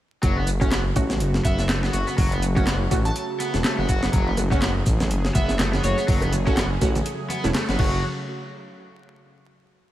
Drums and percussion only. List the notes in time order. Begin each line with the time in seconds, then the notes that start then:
0.23 kick, closed hi-hat, shaker
0.47 closed hi-hat, shaker
0.61 kick, shaker
0.71 snare, clap, closed hi-hat, shaker
0.96 kick, closed hi-hat, shaker
1.10 snare, shaker
1.20 closed hi-hat, shaker
1.34 snare
1.45 kick, closed hi-hat, shaker
1.59 snare, shaker
1.69 snare, clap, closed hi-hat, shaker
1.83 snare
1.93 closed hi-hat, shaker
2.08 shaker
2.18 kick, open hi-hat, shaker
2.32 closed hi-hat
2.42 closed hi-hat, shaker
2.56 kick, shaker
2.67 snare, clap, closed hi-hat, shaker
2.91 kick, closed hi-hat, shaker
3.05 closed hi-hat, shaker
3.16 closed hi-hat, shaker
3.40 closed hi-hat, shaker
3.54 snare, shaker
3.64 snare, clap, closed hi-hat, shaker
3.89 kick, closed hi-hat, shaker
4.03 snare, shaker
4.13 kick, closed hi-hat, shaker
4.27 high conga
4.37 closed hi-hat, high bongo, low conga, shaker
4.52 kick, shaker
4.62 snare, clap, closed hi-hat, high bongo, high conga, shaker
4.86 kick, closed hi-hat, shaker
5.00 snare, high bongo, high conga, low conga, shaker
5.11 closed hi-hat, shaker
5.25 snare, high bongo
5.35 kick, closed hi-hat, high conga, shaker
5.49 snare, shaker
5.59 snare, clap, closed hi-hat, high bongo, low conga, shaker
5.73 snare, high conga
5.84 closed hi-hat, high bongo, shaker
5.98 shaker
6.08 kick, open hi-hat, shaker
6.21 closed hi-hat, high bongo, high conga
6.32 closed hi-hat, low conga, shaker
6.47 kick, high bongo, shaker
6.57 snare, clap, closed hi-hat, high conga, shaker
6.81 kick, closed hi-hat, high bongo, shaker
6.95 closed hi-hat, high conga, low conga, shaker
7.06 closed hi-hat, high bongo, shaker
7.29 closed hi-hat, high conga, shaker
7.44 snare, high bongo, shaker
7.55 snare, clap, closed hi-hat, low conga, shaker
7.69 snare, high bongo, high conga
7.79 kick, crash